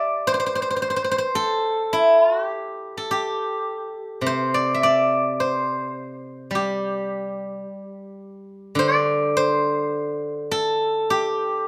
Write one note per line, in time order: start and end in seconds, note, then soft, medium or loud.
0.00 1.00 G4 medium
0.00 0.27 C5 medium
0.00 1.54 D5 medium
0.00 1.18 E5 medium
0.27 0.33 C5 medium
0.34 0.39 C5 medium
0.40 0.46 C5 medium
0.46 0.55 C5 medium
0.55 0.62 C5 medium
0.62 0.70 C5 medium
0.70 0.76 C5 medium
0.76 0.82 C5 medium
0.82 0.90 C5 medium
0.90 0.96 C5 medium
0.96 1.04 C5 medium
1.04 1.11 C5 medium
1.11 1.18 C5 medium
1.18 3.16 C5 medium
1.35 2.97 A4 medium
1.93 2.20 E4 medium
2.20 2.33 F4 medium
2.33 2.46 F#4 medium
2.46 3.11 G4 medium
2.97 5.17 A4 medium
3.11 5.46 G4 medium
4.21 7.64 C3 soft
4.26 5.40 C5 medium
4.54 4.83 D5 medium
4.75 6.46 E5 medium
4.83 6.68 D5 medium
5.40 7.38 C5 medium
6.51 9.91 G3 soft
6.55 8.90 G4 medium
8.75 11.68 D3 medium
8.75 10.63 D5 medium
9.37 11.35 C5 medium
10.51 11.68 A4 medium
11.10 11.68 G4 medium